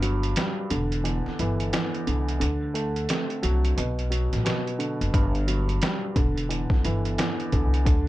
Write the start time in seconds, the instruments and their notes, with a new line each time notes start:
Already playing: upright bass G1, upright piano G2
0.02 upright piano F#3, closed hi-hat
0.23 closed hi-hat
0.36 upright piano G3, snare, closed hi-hat
0.70 upright bass E1, upright piano D3, closed hi-hat
0.92 closed hi-hat
1.04 upright piano E2, closed hi-hat
1.26 muted upright bass stroke, snare
1.39 upright bass G1, upright piano E3, closed hi-hat
1.60 closed hi-hat
1.73 upright piano E2, snare, closed hi-hat
1.94 closed hi-hat
2.07 upright bass C2, upright piano D3, closed hi-hat
2.29 closed hi-hat
2.40 upright bass D2, upright piano D3, closed hi-hat
2.74 upright piano A3, closed hi-hat
2.96 closed hi-hat
3.09 upright piano C4, snare, closed hi-hat
3.30 closed hi-hat
3.43 upright bass C2, upright piano F#3, closed hi-hat
3.65 closed hi-hat
3.77 upright bass B1, upright piano B2, closed hi-hat
3.99 closed hi-hat
4.10 upright piano F#3, closed hi-hat
4.33 upright bass A1, snare, closed hi-hat
4.45 upright piano B2, snare, closed hi-hat
4.67 closed hi-hat
4.79 upright piano D3, closed hi-hat
5.01 upright bass F#1, closed hi-hat
5.14 upright bass G1, upright piano G2, kick, closed hi-hat
5.35 closed hi-hat
5.47 upright piano F#3, closed hi-hat
5.69 closed hi-hat
5.82 upright piano G3, snare, closed hi-hat
6.16 upright bass E1, upright piano D3, kick, closed hi-hat
6.38 closed hi-hat
6.49 upright piano E2, closed hi-hat
6.70 muted upright bass stroke, kick, snare
6.85 upright bass G1, upright piano E3, closed hi-hat
7.05 closed hi-hat
7.18 upright piano E2, snare, closed hi-hat
7.40 closed hi-hat
7.52 upright bass C2, upright piano D3, kick, closed hi-hat
7.74 closed hi-hat
7.85 upright bass D2, upright piano D3, kick, closed hi-hat